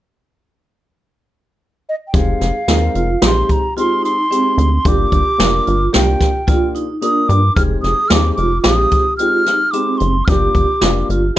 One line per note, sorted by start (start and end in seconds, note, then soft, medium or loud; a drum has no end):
1.89 1.95 D#5 medium
2.08 2.16 G5 medium
2.13 2.35 F1 loud
2.13 2.50 G#3 medium
2.13 2.50 C4 medium
2.13 2.50 D#4 medium
2.13 2.50 G4 medium
2.13 2.33 G#4 medium
2.13 3.23 F5 medium
2.13 kick loud
2.13 closed hi-hat medium
2.41 2.52 F1 medium
2.41 2.80 G#4 medium
2.41 snare soft
2.41 closed hi-hat medium
2.68 2.89 D#2 medium
2.68 3.04 G#3 medium
2.68 3.04 C4 medium
2.68 3.05 D#4 medium
2.68 3.05 A#4 medium
2.68 snare loud
2.68 closed hi-hat medium
2.95 3.16 F1 medium
2.95 3.15 F4 medium
2.95 closed hi-hat medium
3.22 3.43 A#1 medium
3.22 3.59 G#3 medium
3.22 3.59 C4 medium
3.22 3.59 D#4 medium
3.22 3.61 G4 medium
3.22 3.59 G4 medium
3.22 3.43 C6 medium
3.22 snare loud
3.22 closed hi-hat medium
3.43 3.53 C6 medium
3.49 3.77 A#5 medium
3.49 kick medium
3.49 closed hi-hat medium
3.76 4.13 G#3 medium
3.76 4.13 C4 medium
3.76 4.13 D#4 medium
3.76 3.96 F4 medium
3.76 4.13 G4 medium
3.76 4.03 C6 medium
3.76 closed hi-hat medium
4.02 4.22 D#4 medium
4.02 4.89 C6 medium
4.02 closed hi-hat medium
4.30 4.67 G#3 medium
4.30 4.67 C4 medium
4.30 4.69 C4 medium
4.30 4.67 D#4 medium
4.30 4.67 G4 medium
4.30 closed hi-hat medium
4.58 4.79 D2 medium
4.58 closed hi-hat medium
4.85 5.06 G1 loud
4.85 5.21 A#3 medium
4.85 5.22 D4 medium
4.85 5.21 F4 medium
4.85 5.04 G4 medium
4.85 5.22 G4 medium
4.85 5.94 D6 loud
4.85 kick medium
4.85 closed hi-hat medium
5.12 5.23 G1 medium
5.12 5.51 G4 medium
5.12 kick medium
5.12 closed hi-hat medium
5.38 5.60 F1 medium
5.38 5.75 A#3 medium
5.38 5.75 D4 medium
5.38 5.75 F4 medium
5.38 5.75 A#4 medium
5.38 snare loud
5.38 closed hi-hat medium
5.66 5.88 G1 medium
5.66 5.86 F4 medium
5.66 closed hi-hat medium
5.92 6.16 C2 medium
5.92 6.29 A#3 medium
5.92 6.29 D4 medium
5.92 6.30 F4 medium
5.92 6.32 G4 medium
5.92 6.30 G4 medium
5.92 6.72 G5 medium
5.92 snare loud
5.92 closed hi-hat medium
6.21 kick medium
6.21 snare soft
6.21 closed hi-hat medium
6.47 6.84 A#3 medium
6.47 6.84 D4 medium
6.47 6.67 F4 medium
6.47 6.84 F4 medium
6.47 6.85 G4 medium
6.47 kick medium
6.47 closed hi-hat medium
6.75 6.94 D#4 medium
6.75 closed hi-hat medium
7.01 7.38 A#3 medium
7.01 7.38 D4 medium
7.01 7.41 D4 medium
7.01 7.38 F4 medium
7.01 7.39 A#4 medium
7.01 7.30 D#6 medium
7.01 closed hi-hat medium
7.28 7.50 G2 loud
7.28 7.55 D6 medium
7.28 closed hi-hat medium
7.56 7.78 F1 loud
7.56 7.93 G#3 medium
7.56 7.93 C4 medium
7.56 7.93 D#4 medium
7.56 7.93 G4 medium
7.56 7.76 G#4 medium
7.56 7.62 F6 loud
7.56 kick loud
7.56 closed hi-hat medium
7.82 7.94 F1 medium
7.82 8.22 G#4 medium
7.82 8.10 D#6 medium
7.82 snare soft
7.82 closed hi-hat medium
8.08 8.32 D#2 medium
8.08 8.47 G#3 medium
8.08 8.47 C4 medium
8.08 8.47 D#4 medium
8.08 8.47 G4 medium
8.08 8.35 D6 loud
8.08 8.13 F6 medium
8.08 snare loud
8.08 closed hi-hat medium
8.35 8.59 F1 medium
8.35 8.58 F4 medium
8.35 8.62 D6 medium
8.35 closed hi-hat medium
8.62 8.86 A#1 medium
8.62 9.01 G#3 medium
8.62 9.01 C4 medium
8.62 9.01 D#4 medium
8.62 9.01 G4 medium
8.62 9.04 G4 medium
8.62 9.14 D#6 medium
8.62 snare loud
8.62 closed hi-hat medium
8.91 kick medium
8.91 closed hi-hat medium
9.17 9.56 G#3 medium
9.17 9.56 C4 medium
9.17 9.56 D#4 medium
9.17 9.39 F4 medium
9.17 9.56 G4 medium
9.17 9.73 F6 medium
9.17 closed hi-hat medium
9.46 9.67 D#4 medium
9.46 snare soft
9.46 closed hi-hat medium
9.71 10.09 G#3 medium
9.71 10.10 C4 medium
9.71 10.12 C4 medium
9.71 10.10 D#4 medium
9.71 10.10 G4 medium
9.71 9.99 D6 medium
9.71 closed hi-hat medium
9.98 10.22 F#1 medium
9.98 10.26 C6 medium
9.98 closed hi-hat medium
10.25 10.49 G1 loud
10.25 10.64 A#3 medium
10.25 10.64 D4 medium
10.25 10.64 F4 medium
10.25 10.65 G4 medium
10.25 10.48 G4 medium
10.25 10.30 F6 medium
10.25 kick loud
10.25 closed hi-hat medium
10.29 11.08 D6 medium
10.54 10.65 G1 medium
10.54 10.94 G4 medium
10.54 kick medium
10.54 closed hi-hat medium
10.81 11.04 F1 medium
10.81 11.19 A#3 medium
10.81 11.19 D4 medium
10.81 11.19 F4 medium
10.81 11.19 G4 medium
10.81 snare loud
10.81 closed hi-hat medium
11.09 11.31 G1 medium
11.09 11.30 F4 medium
11.09 closed hi-hat medium